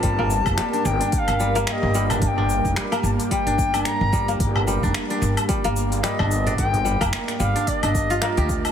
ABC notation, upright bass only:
X:1
M:4/4
L:1/16
Q:"Swing 16ths" 1/4=110
K:Eblyd
V:1 name="Upright bass" clef=bass
G,,,3 F,,, z2 G,,, z2 G,,,3 z G,,,3 | G,,,3 F,,, z2 G,,, z2 G,,,3 z G,,,3 | G,,,3 F,,, z2 G,,, z2 G,,,3 z G,,,3 | G,,,3 F,,, z2 G,,, z2 G,,,3 z D,,3 |]